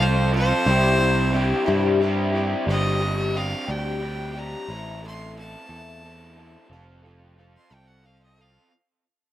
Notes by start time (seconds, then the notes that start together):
Already playing: C2
0.00 F3 C4 F4 A4 C5
0.34 C4 F4 A4 C5
0.66 C2 C3 G3 C4 D4 E4 G4
1.00 C4 D4 E4 G4
1.34 G3 C4 D4 E4 G4
1.66 G2 C3 G3 C4 D4 E4 G4
2.01 G3 C4 D4 E4 G4
2.35 C4 D4 E4 G4
2.67 G1 G2 D3 G3 C4 D4 D#5
2.71 G4
3.02 G3 C4 D4 G4
3.35 G3 C4 D4 G4 F5
3.68 D2 G2 D3 G3 C4 D4 G4 G5
4.03 G3 C4 D4 G4
4.35 G3 C4 D4 G4 A#5
4.68 A1 A2 E3 A3 C4 E4 A4
5.03 A3 C4 E4 A4 C6
5.36 E3 A3 C4 E4 A5
5.40 A4
5.69 E2 A2 E3 A3 C4 E4 A4
6.03 E3 A3 C4 E4
6.08 A4
6.38 A3 C4 E4 A4
6.68 F1 F3
6.73 F3 C4 F4 A4
7.06 C4 F4 A4
7.38 F3 C4 F4 A4
7.57 C6
7.71 C2 F3 C4 F4 A4 G5
7.88 F#5
8.04 F3 C4 F4 A4 F5
8.23 D#5
8.38 C4 F4 A4 F5